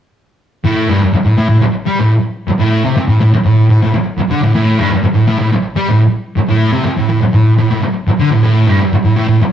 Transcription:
0.65 A2
0.89 G2
1.01 muted distorted electric guitar stroke
1.14 muted distorted electric guitar stroke
1.26 A2
1.38 A2
1.49 A2
1.62 muted distorted electric guitar stroke
1.86 G3
1.99 A2
2.48 muted distorted electric guitar stroke
2.59 A2
2.85 C3
2.97 muted distorted electric guitar stroke
3.08 A2
3.21 A2
3.33 muted distorted electric guitar stroke
3.46 A2
3.70 A2
3.82 A2
3.94 muted distorted electric guitar stroke
4.18 muted distorted electric guitar stroke
4.31 D3
4.43 A2
4.55 A2
4.80 G2
4.91 muted distorted electric guitar stroke
5.04 muted distorted electric guitar stroke
5.15 A2
5.28 A2
5.40 A2
5.52 muted distorted electric guitar stroke
5.76 G3
5.89 A2
6.36 muted distorted electric guitar stroke
6.49 A2
6.73 C3
6.85 muted distorted electric guitar stroke
6.97 A2
7.09 A2
7.21 muted distorted electric guitar stroke
7.34 A2
7.59 A2
7.71 A2
7.82 muted distorted electric guitar stroke
8.08 muted distorted electric guitar stroke
8.19 D3
8.32 A2
8.43 A2
8.67 G2
8.80 muted distorted electric guitar stroke
8.93 muted distorted electric guitar stroke
9.05 A2
9.16 A2
9.28 A2
9.41 muted distorted electric guitar stroke

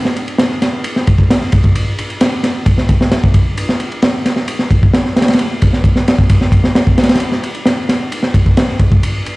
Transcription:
0.05 snare
0.16 ride
0.28 ride
0.38 snare, ride
0.62 snare, ride
0.84 ride
0.96 snare
1.07 kick, ride
1.18 kick
1.30 snare, ride
1.41 snare
1.52 kick, ride
1.64 kick
1.75 ride
1.98 ride
2.10 ride
2.21 snare, ride
2.43 snare, ride
2.66 kick, ride
2.78 snare
2.89 kick, ride
3.01 snare
3.11 snare, ride
3.24 kick
3.34 kick, ride
3.57 ride
3.69 snare
3.80 ride
3.92 ride
4.02 snare, ride
4.26 snare, ride
4.36 snare
4.48 ride
4.59 snare
4.71 kick, ride
4.83 kick
4.94 snare, ride
5.06 snare
5.16 snare, ride
5.22 snare, ride
5.28 snare, ride
5.33 snare, ride
5.39 ride
5.62 kick, ride
5.73 snare
5.84 kick, ride
5.96 snare
6.08 snare, ride
6.19 kick
6.29 kick, ride
6.41 snare
6.52 kick, ride
6.64 snare
6.75 snare, ride
6.87 kick
6.98 snare, ride
7.03 snare, ride
7.09 snare, ride
7.15 snare, ride
7.20 ride
7.32 snare
7.43 ride
7.55 ride
7.66 snare, ride
7.89 snare, ride
8.12 ride
8.23 snare
8.34 kick, ride
8.46 kick
8.57 snare, ride
8.68 snare
8.79 kick, ride
8.92 kick
9.03 ride
9.26 ride

